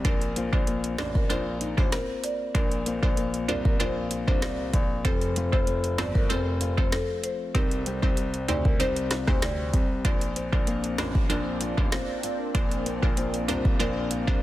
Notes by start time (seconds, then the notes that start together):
Already playing: G3 C4 G4
0.05 A#1 D4 F4 A#4 C5, kick, closed hi-hat
0.21 closed hi-hat
0.36 A#3 C4 F4, closed hi-hat
0.52 A#1 D4 F4 A#4 C5, kick
0.67 A#3, closed hi-hat
0.84 closed hi-hat
0.98 A1 D4 F4 A#4 C5 D5, snare, closed hi-hat
1.15 A#4, kick
1.30 A#1 A#3 C4 D4 F4 A#4 C5, closed hi-hat
1.61 D#4, closed hi-hat
1.77 A1 D4 F4 A#4 C5, kick
1.92 C4 A#4, snare, closed hi-hat
2.24 D5, closed hi-hat
2.54 A#1 A#2 D4 F4 A#4 C5, kick, closed hi-hat
2.71 closed hi-hat
2.86 A#3 C4 F4, closed hi-hat
3.02 A#1 D4 F4 A#4 C5, kick
3.17 A#3, closed hi-hat
3.34 closed hi-hat
3.48 C2 D4 F4 A#4 C5 D5, closed hi-hat
3.65 A#4, kick
3.80 A#1 A#3 C4 D4 F4 A#4 C5, closed hi-hat
4.11 F4, closed hi-hat
4.27 C2 D4 F4 A#4 C5, kick
4.42 C4 D5, snare, closed hi-hat
4.74 A#1, kick, closed hi-hat
5.05 F1 F3 C4 F4 A4 C5, kick, closed hi-hat
5.21 closed hi-hat
5.36 A3 C4 F4, closed hi-hat
5.52 F1 C4 F4 A4 C5, kick
5.67 A3, closed hi-hat
5.84 closed hi-hat
5.98 G1 C4 F4 A4 C5 D5, snare, closed hi-hat
6.15 A#4, kick
6.29 F1 A3 C4 F4 A4 C5, closed hi-hat
6.61 F4, closed hi-hat
6.77 F1 C4 F4 A4 C5, kick
6.92 C4 A4, snare, closed hi-hat
7.24 C5, closed hi-hat
7.54 C2 C3 C4 D#4 G4 A#4 C5, kick, closed hi-hat
7.71 closed hi-hat
7.86 G3 C4 G4, closed hi-hat
8.02 C2 C4 D#4 G4 C5, kick
8.17 G3, closed hi-hat
8.34 closed hi-hat
8.48 D2 C4 D#4 G4 C5 D5, closed hi-hat
8.65 A#4, kick
8.80 C2 G3 C4 D#4 G4 C5, closed hi-hat
8.96 closed hi-hat
9.11 F4, snare, closed hi-hat
9.27 D2 C4 D#4 G4 C5, kick, cross-stick
9.42 C4 D5, snare, closed hi-hat
9.73 C2, kick, closed hi-hat
10.05 A#1 A#3 C4 D4 F4 A#4 C5, kick, closed hi-hat
10.21 closed hi-hat
10.36 C4, closed hi-hat
10.52 A#1 D4 F4 A#4 C5, kick
10.67 A#3 C4 F4, closed hi-hat
10.84 closed hi-hat
10.98 A1 D4 F4 A#4 C5, snare, closed hi-hat
11.15 kick
11.29 A#1 A#3 C4 D4 F4 A#4 C5, closed hi-hat
11.61 F4, closed hi-hat
11.77 A1 D4 F4 A#4 C5, kick
11.92 C4, snare, closed hi-hat
12.23 F4, closed hi-hat
12.54 A#1 A#2 D4 F4 A#4 C5, kick, closed hi-hat
12.71 closed hi-hat
12.86 C4, closed hi-hat
13.02 A#1 D4 F4 A#4 C5, kick
13.17 A#3 C4 F4, closed hi-hat
13.34 closed hi-hat
13.48 C2 D4 F4 A#4 C5, closed hi-hat
13.65 kick
13.79 A#1 A#3 C4 D4 F4 A#4 C5, closed hi-hat
14.11 F4, closed hi-hat
14.27 C2 D4 F4 A#4 C5, kick